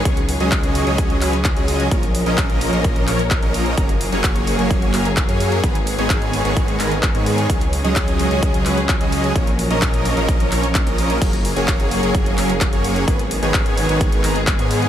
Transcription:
<<
  \new Staff \with { instrumentName = "Supersaw synth" } { \time 4/4 \key fis \major \tempo 4 = 129 <fis gis cis' gis' cis''>16 r8 <fis gis cis' gis' dis''>4 <fis gis cis' gis' dis''>8. <fis gis cis' gis' b'>16 r8 <fis gis cis' gis' dis''>8. | <eis ais cis' ais' cis''>16 r8 <eis ais cis' ais' dis''>4 <eis ais cis' ais' dis''>8. <eis ais cis' ais' cis''>16 r8 <eis ais cis' ais' dis''>8. | <fis ais cis' gis' ais'>16 r8 <fis ais cis' gis' cis''>4 <fis ais cis' gis' cis''>8. <fis ais cis' gis' ais'>16 r8 <fis ais cis' gis' cis''>8. | <dis gis b gis' b'>16 r8 <dis gis b gis' cis''>4 <dis gis b gis' cis''>8. <dis gis b gis' ais'>16 r8 <dis gis b gis' cis''>8. |
<fis gis cis' gis' cis''>16 r8 <fis gis cis' gis' dis''>4 <fis gis cis' gis' dis''>8. <fis gis cis' gis' b'>16 r8 <fis gis cis' gis' dis''>8. | <eis ais cis' ais' cis''>16 r8 <eis ais cis' ais' dis''>4 <eis ais cis' ais' dis''>8. <eis ais cis' ais' cis''>16 r8 <eis ais cis' ais' dis''>8. | <fis ais cis' gis' ais'>16 r8 <fis ais cis' gis' cis''>4 <fis ais cis' gis' cis''>8. <fis ais cis' gis' ais'>16 r8 <fis ais cis' gis' cis''>8. | <dis gis b gis' b'>16 r8 <dis gis b gis' cis''>4 <dis gis b gis' cis''>8. <dis gis b gis' ais'>16 r8 <dis gis b gis' cis''>8. | }
  \new Staff \with { instrumentName = "String section" } { \time 4/4 \key fis \major << { gis'1 | ais'1 | gis'1~ | gis'1 |
gis'1 | ais'1 | gis'1 | gis'1 | } \\ { <fis cis'>1 | <eis cis'>1 | <fis ais>1 | <dis b>1 |
<fis cis'>1 | <eis cis'>1 | <fis ais>1 | <dis b>1 | } >> }
  \new Staff \with { instrumentName = "Detuned saw bass" } { \clef bass \time 4/4 \key fis \major cis,8. cis,4 cis,8. cis,8. cis,8. | ais,,8. ais,,4 ais,,8. ais,,8. ais,,8. | fis,,8. fis,,4 fis,,8. fis,,8. fis,8. | gis,,8. gis,,4 gis,,8. gis,,8. gis,8. |
cis,8. cis,4 cis,8. cis,8. cis,8. | ais,,8. ais,,4 ais,,8. ais,,8. ais,,8. | fis,,8. fis,,4 fis,,8. fis,,8. fis,,8. | gis,,8. gis,,4 gis,,8. gis,,8. gis,8. | }
  \new DrumStaff \with { instrumentName = "Drums" } \drummode { \time 4/4 <hh bd>16 hh16 hho16 hh16 <hc hh bd>16 hh16 hho16 hh16 <hh bd>16 hh16 <hc hho>16 hh16 <hc hh bd>16 hh16 hho16 hh16 | <hh bd>16 hh16 hho16 hh16 <hc hh bd>16 hh16 hho16 hh16 <hh bd>16 hh16 <hc hho>16 hh16 <hc hh bd>16 hh16 hho16 hh16 | <hh bd>16 hh16 hho16 hh16 <hc hh bd>16 hh16 hho16 hh16 <hh bd>16 hh16 <hc hho>16 hh16 <hc hh bd>16 hh16 hho16 hh16 | <hh bd>16 hh16 hho16 hh16 <hc hh bd>16 hh16 hho16 hh16 <hh bd>16 hh16 <hc hho>16 hh16 <hc hh bd>16 hh16 hho16 hh16 |
<hh bd>16 hh16 hho16 hh16 <hc hh bd>16 hh16 hho16 hh16 <hh bd>16 hh16 <hc hho>16 hh16 <hc hh bd>16 hh16 hho16 hh16 | <hh bd>16 hh16 hho16 hh16 <hc hh bd>16 hh16 hho16 hh16 <hh bd>16 hh16 <hc hho>16 hh16 <hc hh bd>16 hh16 hho16 hh16 | <cymc hh bd>16 hh16 hho16 hh16 <hc hh bd>16 hh16 hho16 hh16 <hh bd>16 hh16 <hc hho>16 hh16 <hc hh bd>16 hh16 hho16 hh16 | <hh bd>16 hh16 hho16 hh16 <hc hh bd>16 hh16 hho16 hh16 <hh bd>16 hh16 <hc hho>16 hh16 <hc hh bd>16 hh16 hho16 hh16 | }
>>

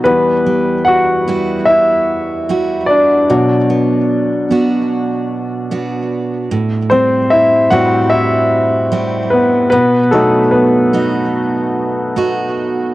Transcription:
<<
  \new Staff \with { instrumentName = "Grand piano" } { \time 4/4 \key b \phrygian \tempo 4 = 74 b'4 <fis' fis''>4 <e' e''>4. <d' d''>8~ | <d' d''>4. r2 r8 | r8 <c' c''>8 <e' e''>8 <fis' fis''>8 <e' e''>4. <b b'>8 | <b b'>8 <a a'>8 <b b'>2~ <b b'>8 r8 | }
  \new Staff \with { instrumentName = "Grand piano" } { \clef bass \time 4/4 \key b \phrygian <e g b>4. r2 r8 | <b, fis d'>4. r2 r8 | r4. <a, g c'>2~ <a, g c'>8 | r8 <b, fis dis'>8 r2. | }
  \new Staff \with { instrumentName = "Steel-string acoustic guitar" } { \time 4/4 \key b \phrygian e,8 g4 <g e' fis'>4. <g e' fis'>4 | b,8 b4 <b d' fis'>4. <b d' fis'>4 | a,8 g4 <g c' e'>4. <g c' e'>4 | b,8 b4 <b dis' fis'>4. <b dis' fis'>4 | }
>>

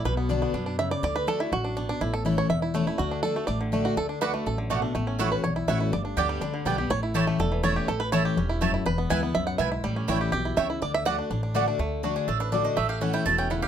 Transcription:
<<
  \new Staff \with { instrumentName = "Mandolin" } { \time 4/4 \key d \major \tempo 4 = 245 r1 | r1 | r1 | r1 |
r4 <a fis' d'' fis''>8 r4. <a fis' d'' fis''>8 r8 | r4 <a e' cis'' fis''>8 r4. <a e' cis'' fis''>8 r8 | r4 <b g' d'' g''>8 r4. <b g' d'' g''>8 r8 | r4 <a e' cis'' a''>8 r4. <a e' cis'' a''>8 r8 |
r4 <a e' cis'' a''>8 r4. <a e' cis'' a''>8 r8 | r4 <b e' b' gis''>8 r4. <b e' b' gis''>8 r8 | r4 <a e' cis'' g''>8 r4. <a e' cis'' g''>8 r8 | r4 <a fis' d'' fis''>8 r4. <a fis' d'' fis''>8 r8 |
r4 fis'8 gis'8 a'8 b'8 d''8 ees''8 | e''8 f''8 fis''8 g''8 a''8 g''8 fis''8 f''8 | }
  \new Staff \with { instrumentName = "Five-string banjo" } { \time 4/4 \key d \major << { b'4. r4. e''8 d''8 | d''8 b'8 a'8 e'8 fis'4. d'8 | e'8 a'4 cis''8 e''8 r4 e'8 | fis'4 a'4 d''8 r4 fis'8 |
a'4 b'4 a'8 r4. | r4. b'8 cis''4 e''4 | d''8 r2. r8 | cis''4 r4 a'4 cis''4 |
a'8 b'8 cis''4. r4. | b'4 gis''4 e''8 fis''8 e''4~ | e''8 r4. g'4 e''4 | d''8 e''8 fis''4. r4. |
r1 | r1 | } \\ { r8 b8 d'8 b8 d'8 d'4. | r2 r8 d'8 d'4 | r4 e'4. e'8 a4 | r8 d'4 a4 d8 a4~ |
a8 d'4 a4 d8 a8 d'8 | a8 cis'8 e'4. e'4 e'8 | r8 d'8 g'8 g8 d'8 d8 g8 g'8 | r8 e'8 g'8 a4 e4 g'8~ |
g'4 r8 g'8 cis'8 e'8 a8 e'8 | r8 b4 b4. r8 e'8 | g8 cis'8 e'8 g'4 e'4 e'8 | r4. d'8 d'8 d'8 a8 d'8 |
a4 d'8 d'8 a8 d'8 d'8 d'8 | a8 g'8 cis'8 e'8 a8 cis'8 e'8 g'8 | } >> }
  \new Staff \with { instrumentName = "Steel-string acoustic guitar" } { \time 4/4 \key d \major << { r4 <d b d' fis'>4 r2 | r4 <d a d' fis'>4 r2 | r4 <e a cis' e'>4 r4 <e a cis' e'>8 <cis' e'>8 | r4 <d a d' fis'>8 <d' fis'>8 r4 <d a d' fis'>4 |
r4 <d a d' fis'>4 r2 | r4 <e a cis' fis'>4 r4 <e a cis' fis'>4 | r4 <d g b g'>4 r4 <d g b g'>8 <b g'>8 | r4 <e a cis' e'>4 r4 <e a cis' e'>4 |
r4 <e a cis' e'>4 r2 | r4 <e gis b e'>8 <b e'>8 r2 | r4 <e g cis' e'>4 r2 | r4 <d a d' fis'>4 r4 <d a d' fis'>4 |
r4 <d a d' fis'>4 r4 <d a d' fis'>4 | r4 <e a cis' e'>4 r2 | } \\ { b,2 b,4 cis4 | d2 fis,4 b,4 | a,2 e,2 | d2 a,2 |
d2 fis,4 b,4 | a,2 e,2 | g,2 d2 | a,2 e,2 |
a,2 g,4 fis,4 | e,2 fis,4 gis,4 | a,2 b,4 cis4 | d2 a,2 |
d2 a,2 | a,2 b,4 cis4 | } >> }
  \new Staff \with { instrumentName = "Upright bass" } { \clef bass \time 4/4 \key d \major b,,2 fis,2 | d,2 a,,2 | a,,2 e,,2 | d,2 a,,2 |
d,2 a,,2 | a,,2 b,,4 a,,4 | g,,4 d,4 cis,4 b,,4 | a,,2 e,,2 |
a,,2 e,,2 | e,,4 d,4 cis,4 b,,4 | a,,4 a,,4 b,,4 cis,4 | d,2 a,,2 |
d,2 a,,2 | a,,2 e,,2 | }
>>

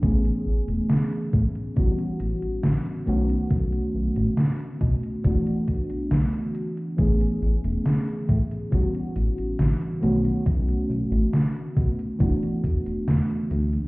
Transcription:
<<
  \new Staff \with { instrumentName = "FM electric piano" } { \time 4/4 \key a \major \tempo 4 = 69 <e a b cis' gis'>2 <e g b cis' fis'>4. <dis a b cis' fis'>8~ | <dis a b cis' fis'>2 <e a b d' fis'>2 | <e a b cis' gis'>2 <e g b cis' fis'>4. <dis a b cis' fis'>8~ | <dis a b cis' fis'>2 <e a b d' fis'>2 | }
  \new Staff \with { instrumentName = "Analog synth bass" } { \clef bass \time 4/4 \key a \major a,,16 r16 a,,16 e,,16 r8 a,16 r16 a,,16 r16 a,,16 a,,16 a,,16 r16 b,,16 r16 | b,,16 r16 b,,16 a,,16 r8 b,16 r16 e,,16 r8 b,,16 b,,16 r8. | a,,16 r16 a,,16 e,,16 r8 a,16 r16 a,,16 r16 a,,16 a,,16 a,,16 r16 b,,16 r16 | b,,16 r16 b,,16 a,,16 r8 b,16 r16 e,,16 r16 e,,16 e,,16 e,,16 r16 d,16 r16 | }
  \new DrumStaff \with { instrumentName = "Drums" } \drummode { \time 4/4 <hh bd>16 hh8 hh16 <hh sn>16 hh16 <hh bd>16 hh16 <hh bd>16 hh16 hh16 hh16 <hh sn>16 hh16 hh16 hh16 | <hh bd>16 hh8 hh16 <hh sn>16 hh16 <hh bd>16 hh16 <hh bd>16 hh16 <hh bd>16 hh16 <hh sn>16 hh16 hh16 hh16 | <hh bd tamb>16 hh16 tamb16 <hh tamb>16 <hh sn tamb>16 hh16 <hh bd tamb>16 <hh tamb>16 <hh bd tamb>16 hh16 <hh tamb>16 <hh tamb>16 <hh sn tamb>16 hh16 <hh tamb>16 <hh tamb>16 | <hh bd tamb>16 hh16 tamb16 <hh tamb>16 <hh sn tamb>16 hh16 <hh bd tamb>16 <hh tamb>16 <hh bd tamb>16 hh16 <hh bd tamb>16 <hh tamb>16 <hh sn tamb>16 hh16 <hh tamb>16 <hh tamb>16 | }
>>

